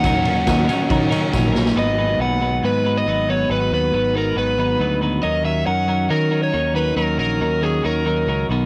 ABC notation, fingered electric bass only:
X:1
M:4/4
L:1/8
Q:1/4=138
K:G#m
V:1 name="Fingered electric bass" clef=bass
D,,2 D,, z D,2 A,,,2 | G,,,2 B,,,2 G,,2 G,,,2 | G,,, D,, G,,,2 G,,,2 =D,,2 | D,,2 F,,2 D,2 D,,2 |
D,, A,,, D,,2 D,,2 C,, B,,, |]